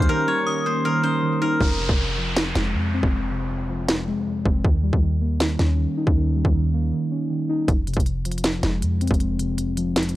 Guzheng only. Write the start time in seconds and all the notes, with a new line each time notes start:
Already playing: G#4 C5
0.09 A#4
0.28 C#5
0.66 C5
0.85 A#4
1.03 C5
1.42 A#4